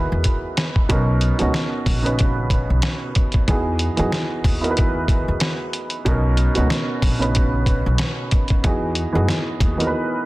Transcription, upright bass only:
0.12 0.22 E2 medium
0.90 1.29 B1 loud
1.41 1.52 C#2 medium
1.86 2.65 A#1 medium
2.70 2.81 B1 medium
3.48 3.87 E2 loud
3.99 4.10 F#2 medium
4.45 5.24 D#2 loud
5.28 5.39 E2 medium
6.06 6.45 B1 loud
6.57 6.68 C#2 medium
7.03 7.82 A#1 medium
7.86 7.97 B1 medium
8.64 9.03 E2 loud
9.15 9.26 F#2 medium
9.61 9.91 D#2 loud

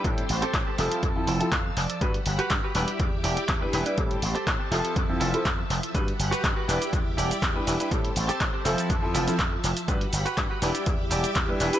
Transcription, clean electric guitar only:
0.42 0.54 C4 loud
0.42 0.54 G4 loud
0.42 0.54 A4 loud
0.66 0.78 C4 medium
0.66 0.78 G4 medium
0.66 0.78 A4 loud
0.78 1.18 E4 medium
0.78 1.18 F4 medium
0.78 1.19 A4 medium
1.27 1.46 E4 loud
1.27 1.47 F4 loud
1.27 1.47 A4 loud
1.27 1.51 A5 medium
1.52 1.75 F5 medium
1.65 muted clean electric guitar stroke medium
1.77 2.00 D5 medium
1.77 muted clean electric guitar stroke soft
2.39 2.50 F#4 loud
2.39 2.51 G4 loud
2.39 2.51 B4 loud
2.63 2.74 F#4 medium
2.63 2.74 G4 medium
2.63 2.75 B4 medium
2.75 3.15 E4 medium
2.75 3.15 G4 medium
2.75 3.15 D5 loud
3.24 3.43 E4 loud
3.24 3.43 G4 loud
3.24 3.43 D5 loud
3.61 muted clean electric guitar stroke medium
3.73 muted clean electric guitar stroke soft
4.35 4.47 C4 loud
4.35 4.47 G4 medium
4.35 4.47 A4 loud
4.59 4.71 C4 medium
4.59 4.71 G4 medium
4.59 4.71 A4 medium
4.71 5.11 E4 medium
4.71 5.12 F4 medium
4.71 5.12 A4 loud
5.20 5.39 E4 loud
5.20 5.40 F4 loud
5.20 5.40 A4 loud
5.58 muted clean electric guitar stroke medium
5.69 muted clean electric guitar stroke soft
6.31 6.43 F#4 loud
6.31 6.44 G4 medium
6.31 6.44 B4 loud
6.56 6.67 F#4 medium
6.56 6.67 G4 medium
6.56 6.68 B4 medium
6.68 7.08 E4 medium
6.68 7.08 G4 medium
6.68 7.09 D5 medium
7.17 7.36 E4 loud
7.17 7.37 G4 loud
7.17 7.37 D5 loud
7.55 muted clean electric guitar stroke medium
7.66 muted clean electric guitar stroke soft
8.28 8.40 C4 loud
8.28 8.41 G4 loud
8.28 8.41 A4 loud
8.53 8.65 C4 medium
8.53 8.65 G4 medium
8.53 8.65 A4 medium
8.65 9.05 E4 medium
8.65 9.05 F4 medium
8.65 9.05 A4 medium
9.14 9.33 E4 loud
9.14 9.33 F4 loud
9.14 9.34 A4 loud
9.52 muted clean electric guitar stroke medium
9.64 muted clean electric guitar stroke soft
10.26 10.37 F#4 loud
10.26 10.38 G4 loud
10.26 10.38 B4 loud
10.50 10.61 F#4 medium
10.50 10.61 G4 medium
10.50 10.62 B4 medium
10.62 11.02 E4 medium
10.62 11.02 G4 medium
10.62 11.02 D5 loud
11.11 11.30 E4 loud
11.11 11.30 G4 loud
11.11 11.30 D5 loud
11.48 muted clean electric guitar stroke medium
11.60 muted clean electric guitar stroke soft

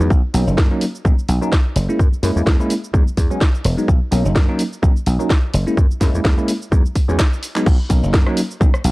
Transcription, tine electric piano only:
0.00 0.09 D#4 medium
0.34 0.67 F#3 medium
0.34 0.68 A#3 medium
0.34 0.68 C#4 medium
0.34 0.68 D#4 medium
0.70 0.84 F#3 medium
0.70 0.84 A#3 medium
0.70 0.84 C#4 medium
0.70 0.84 D#4 loud
1.04 1.14 F#3 medium
1.04 1.15 A#3 medium
1.04 1.15 C#4 medium
1.04 1.15 D#4 medium
1.41 1.49 F#3 medium
1.41 1.49 A#3 medium
1.41 1.49 C#4 medium
1.41 1.50 D#4 loud
1.89 2.02 G#3 medium
1.89 2.02 A#3 medium
1.89 2.02 C#4 medium
1.89 2.02 E4 medium
2.23 2.56 G#3 medium
2.23 2.57 A#3 medium
2.23 2.57 C#4 medium
2.23 2.57 E4 medium
2.59 2.73 G#3 medium
2.59 2.73 A#3 medium
2.59 2.73 C#4 medium
2.59 2.73 E4 loud
2.94 3.04 F#3 medium
2.94 3.04 G#3 medium
2.94 3.04 B3 medium
2.94 3.04 D#4 medium
3.30 3.38 F#3 medium
3.30 3.38 G#3 medium
3.30 3.39 B3 medium
3.30 3.39 C#4 loud
3.77 3.87 F#3 medium
3.77 3.87 G#3 medium
3.77 3.87 B3 medium
3.77 3.87 D#4 medium
4.12 4.45 F#3 medium
4.12 4.45 A#3 medium
4.12 4.46 C#4 medium
4.12 4.46 D#4 loud
4.48 4.62 F#3 medium
4.48 4.62 A#3 medium
4.48 4.62 C#4 medium
4.48 4.62 D#4 loud
4.82 4.92 F#3 medium
4.82 4.93 A#3 medium
4.82 4.93 C#4 medium
4.82 4.93 D#4 medium
5.19 5.27 F#3 medium
5.19 5.27 A#3 medium
5.19 5.27 C#4 medium
5.19 5.28 D#4 loud
5.66 5.80 G#3 medium
5.66 5.80 A#3 medium
5.66 5.80 C#4 medium
5.66 5.80 E4 medium
6.01 6.34 G#3 medium
6.01 6.34 A#3 medium
6.01 6.35 C#4 medium
6.01 6.35 E4 medium
6.37 6.51 G#3 medium
6.37 6.51 A#3 medium
6.37 6.51 C#4 medium
6.37 6.51 E4 loud
6.71 6.81 F#3 medium
6.71 6.82 G#3 medium
6.71 6.82 B3 medium
6.71 6.82 D#4 medium
7.08 7.16 F#3 medium
7.08 7.16 G#3 medium
7.08 7.16 B3 medium
7.08 7.17 C#4 loud
7.55 7.65 F#3 medium
7.55 7.65 G#3 medium
7.55 7.65 B3 medium
7.55 7.65 D#4 medium
7.90 8.23 F#3 medium
7.90 8.23 A#3 medium
7.90 8.24 C#4 medium
7.90 8.24 D#4 medium
8.26 8.40 F#3 loud
8.26 8.40 A#3 medium
8.26 8.40 C#4 medium
8.26 8.40 D#4 loud
8.60 8.70 F#3 medium
8.60 8.71 A#3 medium
8.60 8.71 C#4 medium
8.60 8.71 D#4 medium

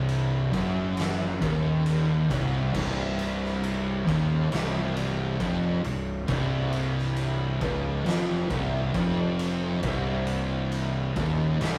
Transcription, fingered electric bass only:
0.00 0.49 C1 loud
0.53 1.38 F#1 loud
1.42 2.26 D#1 medium
2.30 2.71 C1 medium
2.74 4.03 C1 loud
4.07 4.49 D#1 loud
4.52 5.36 C1 loud
5.40 5.81 F1 medium
5.84 6.26 C1 medium
6.28 7.57 C1 medium
7.61 8.03 C#1 loud
8.06 8.47 F1 loud
8.50 8.91 C1 loud
8.94 9.79 F1 medium
9.83 11.12 C1 loud
11.16 11.58 D#1 loud
11.61 11.78 C1 loud

